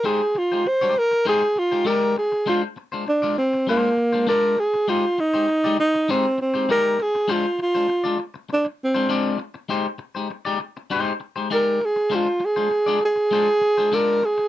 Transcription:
<<
  \new Staff \with { instrumentName = "Tenor saxophone" } { \time 4/4 \key aes \lydian \tempo 4 = 100 aes'8 f'8 c''8 bes'8 aes'8 f'8 bes'8 aes'8 | f'8 r8 d'8 c'8 bes4 bes'8 aes'8 | f'8 ees'4 ees'8 c'8 c'8 bes'8 aes'8 | f'8 f'4 r8 d'8 c'4 r8 |
r2. bes'8 aes'8 | f'8 aes'4 aes'4. bes'8 aes'8 | }
  \new Staff \with { instrumentName = "Clean electric guitar" } { \time 4/4 \key aes \lydian <aes ees' g' c''>16 r8 <aes ees' g' c''>16 r16 <aes ees' g' d''>16 r8 <aes ees' g' c''>16 r8 <aes ees' g' c''>16 <aes ees' g' d''>8 r8 | <aes d' f' c''>16 r8 <aes d' f' c''>16 r16 <aes d' f' d''>16 r8 <aes d' f' c''>16 r8 <aes d' f' c''>16 <aes d' f' d''>8 r8 | <aes ees' g' c''>16 r8 <aes ees' g' c''>16 r16 <aes ees' g' d''>16 r8 <aes ees' g' c''>16 r8 <aes ees' g' c''>16 <aes ees' g' d''>8 r8 | <aes d' f' c''>16 r8 <aes d' f' c''>16 r16 <aes d' f' d''>16 r4 r16 <aes d' f' c''>16 <aes d' f' d''>8 r8 |
<aes ees' g' c''>16 r8 <aes ees' g' c''>16 r16 <aes ees' g' d''>16 r8 <aes ees' g' c''>16 r8 <aes ees' g' c''>16 <aes ees' g' d''>8 r8 | <aes d' f' c''>16 r8 <aes d' f' c''>16 r16 <aes d' f' d''>16 r8 <aes d' f' c''>16 r8 <aes d' f' c''>16 <aes d' f' d''>8 r8 | }
>>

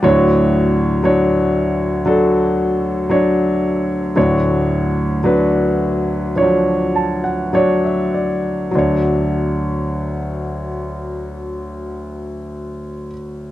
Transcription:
<<
  \new Staff \with { instrumentName = "Grand piano" } { \time 4/4 \key d \major \tempo 4 = 53 << { r1 | r2 r8 a''16 fis''16 d''16 e''16 d''8 | r1 | } \\ { <fis d' cis''>4 <fis d' cis''>4 <fis d' a'>4 <fis d' cis''>4 | <fis d' cis''>4 <fis d' b'>4 <f fis d' cis''>4 <fis d' cis''>4 | <fis d' cis''>1 | } >> }
  \new Staff \with { instrumentName = "Grand piano" } { \clef bass \time 4/4 \key d \major <d, a,>1 | <d, a,>1 | d,1 | }
>>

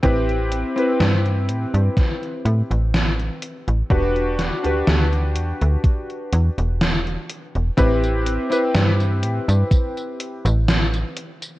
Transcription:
<<
  \new Staff \with { instrumentName = "Electric grand piano" } { \time 4/4 \key a \dorian \tempo 4 = 62 <c' e' g' b'>8. <c' e' g' b'>2.~ <c' e' g' b'>16 | <d' fis' g' b'>8. <d' fis' g' b'>2.~ <d' fis' g' b'>16 | <c' e' g' b'>8. <c' e' g' b'>2~ <c' e' g' b'>8. r8 | }
  \new Staff \with { instrumentName = "FM bass" } { \clef bass \time 4/4 \key a \dorian a,,8 r8 g,8 a,16 g,16 r8 a,16 a,,8 r8 a,,16 | e,,8 r16 d,16 d,8 e,16 d,16 r8 e,16 e,,8 r8 e,,16 | a,,8 r8 g,8 a,16 g,16 r8. a,,8 r8. | }
  \new DrumStaff \with { instrumentName = "Drums" } \drummode { \time 4/4 <hh bd>16 hh16 hh16 hh16 <hh sn>16 hh16 hh16 hh16 <hh bd sn>16 hh16 hh16 hh16 <hh sn>16 hh16 hh16 hh16 | <hh bd>16 hh16 <hh sn>16 hh16 <hh sn>16 hh16 hh16 hh16 <hh bd>16 hh16 hh16 hh16 <hh sn>16 hh16 hh16 hh16 | <hh bd tamb>16 <hh tamb>16 hh16 <hh tamb>16 <hh sn tamb>16 <hh tamb>16 hh16 <hh tamb>16 <hh bd tamb>16 <hh tamb>16 hh16 <hh tamb>16 <hh sn tamb>16 <hh tamb>16 hh16 <hh tamb>16 | }
>>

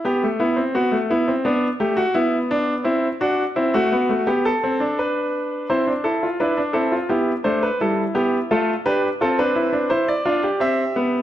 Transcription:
<<
  \new Staff \with { instrumentName = "Grand piano" } { \time 4/4 \key c \major \tempo 4 = 85 << { r1 | r1 | c''8 a'8 b'8 a'8 g'8 c''16 b'16 a'8 g'8 | a'8 b'8 a'16 b'8. c''16 d''8. e''4 | } \\ { g'8 e'8 fis'8 e'8 d'8 g'16 fis'16 e'8 d'8 | e'8 fis'8 e'16 fis'8. g'16 a'8. b'4 | e'16 d'16 e'16 f'16 e'16 d'16 e'16 f'16 e'8 d'8 e'4 | f'8 g'8 f'16 d'16 e'16 d'16 e'8 f'16 g'4~ g'16 | } >> }
  \new Staff \with { instrumentName = "Grand piano" } { \time 4/4 \key c \major b16 a16 b16 c'16 b16 a16 b16 c'16 b8 a8 b4 | c'8 d'8 c'16 a16 b16 a16 b8 c'16 d'4~ d'16 | c'8 r8 d'8 c'8 b8 a8 g8 b8 | a8 d'8 c'4 r8 d'8 c'8 b8 | }
>>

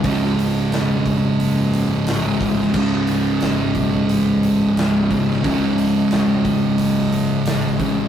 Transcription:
<<
  \new Staff \with { instrumentName = "Distorted electric guitar" } { \clef bass \time 4/4 \key cis \minor \tempo 4 = 89 <cis, gis, cis>2.~ <cis, gis, cis>8 <cis, gis, cis>8 | <cis, gis, cis>2.~ <cis, gis, cis>8 <cis, gis, cis>8 | <cis, gis, cis>2.~ <cis, gis, cis>8 <cis, gis, cis>8 | }
  \new Staff \with { instrumentName = "Distorted electric guitar" } { \clef bass \time 4/4 \key cis \minor <cis, gis, cis>1 | <cis, gis, cis>1 | <cis, gis, cis>1 | }
  \new Staff \with { instrumentName = "Fingered electric bass" } { \clef bass \time 4/4 \key cis \minor cis,,4 e,,4 fis,,4 a,,4 | cis,,4 gis,,8 b,,8 a,,4 cis,4 | cis,,4 e,,4 fis,,4 a,,4 | }
  \new DrumStaff \with { instrumentName = "Drums" } \drummode { \time 4/4 <hho bd>16 sn16 hho8 <hho sn>8 <hho bd>8 hho8 hho8 <hho sn>8 <hho bd>16 sn16 | <cymc bd>16 sn16 <hho sn>8 <hho sn>8 <hho bd>8 hho8 hho8 <hho sn>8 <hho bd>16 sn16 | <hho bd>8 hho8 <hho sn>8 <hho bd>8 hho8 hho8 <hho sn>8 <hho bd>8 | }
>>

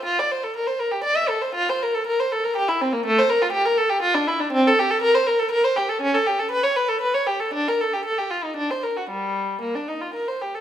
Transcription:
\new Staff \with { instrumentName = "Violin" } { \time 3/4 \key f \major \tempo 4 = 120 f'16 d''16 c''16 a'16 bes'16 c''16 bes'16 g'16 d''16 e''16 a'16 c''16 | f'16 c''16 bes'16 a'16 bes'16 c''16 a'16 bes'16 g'16 e'16 c'16 bes16 | a16 c''16 bes'16 f'16 g'16 bes'16 a'16 g'16 f'16 d'16 e'16 d'16 | \key g \minor c'16 a'16 g'16 a'16 bes'16 c''16 bes'16 a'16 bes'16 c''16 g'16 a'16 |
cis'16 a'16 g'16 a'16 b'16 cis''16 b'16 a'16 b'16 cis''16 g'16 a'16 | d'16 bes'16 a'16 g'16 a'16 g'16 f'16 ees'16 d'16 c''16 bes'16 fis'16 | g4 bes16 d'16 ees'16 f'16 bes'16 c''16 g'16 a'16 | }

